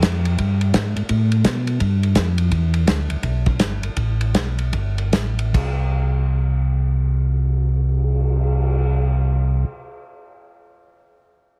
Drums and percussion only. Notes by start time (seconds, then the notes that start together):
0.02 kick, snare, hi-hat pedal, ride
0.25 ride
0.38 kick, ride
0.61 ride
0.74 kick, snare, hi-hat pedal, ride
0.96 ride
1.09 kick, ride
1.32 ride
1.44 kick, snare, hi-hat pedal, ride
1.67 ride
1.80 kick, ride
2.03 ride
2.15 kick, snare, hi-hat pedal, ride
2.38 ride
2.51 kick, ride
2.74 ride
2.87 kick, snare, hi-hat pedal, ride
3.10 ride
3.23 kick, ride
3.46 kick, ride
3.59 kick, snare, hi-hat pedal, ride
3.83 ride
3.97 kick, ride
4.21 ride
4.35 kick, snare, hi-hat pedal, ride
4.59 ride
4.73 kick, ride
4.98 ride
5.13 kick, snare, hi-hat pedal, ride
5.39 ride
5.54 kick, crash
5.81 cymbal swell